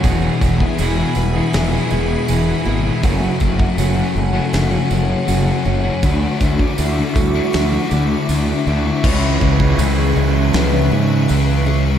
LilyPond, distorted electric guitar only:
\new Staff \with { instrumentName = "Distorted electric guitar" } { \clef bass \time 4/4 \key cis \phrygian \tempo 4 = 80 <e, b, e>8. <b, e>16 <e, b, e>16 <b, e>8 <b, e>8 <b, e>16 <e, b, e>8 <e, b, e>16 <b, e>16 <e, b, e>16 <b, e>16 | <fis, cis fis>8. <cis fis>16 <fis, cis fis>16 <cis fis>8 <cis fis>8 <cis fis>16 <fis, cis fis>8 <fis, cis fis>16 <cis fis>16 <fis, cis fis>16 <cis fis>16 | <d a d'>8. <a d'>16 <d a d'>16 <a d'>8 <a d'>8 <a d'>16 <d a d'>8 <d a d'>16 <a d'>16 <d a d'>16 <a d'>16 | <cis gis cis'>8 <gis cis'>8 <cis gis cis'>8 <gis cis'>8 <cis gis cis'>8 <gis cis'>8 <cis gis cis'>8 <gis cis'>8 | }